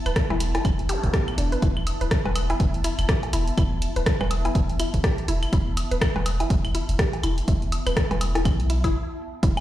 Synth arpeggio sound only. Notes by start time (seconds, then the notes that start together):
0.06 B4
0.30 E4
0.55 E4
0.89 G4
1.14 G4
1.38 D4
1.52 B4
1.62 E4
2.01 B4
2.26 B4
2.50 E4
2.84 E4
3.09 G4
3.33 E4
3.58 E4
3.96 B4
4.21 B4
4.45 E4
4.79 E4
5.04 G4
5.28 E4
5.53 E4
5.91 B4
6.16 B4
6.40 E4
6.75 E4
6.99 G4
7.23 E4
7.48 E4
7.87 B4
8.11 B4
8.35 E4
8.70 E4
8.84 E4
9.43 E4